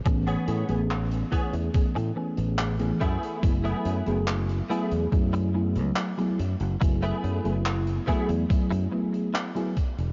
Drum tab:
HH |xxxxxxxxxx-xxxxx|xxxxxxxxxx-xxxxx|xxxxxxxxxx-xxxxx|
CP |----x-------x---|----x-------x---|----x-------x---|
BD |o-----o-o-----o-|o-------o-------|o-----o-o-----o-|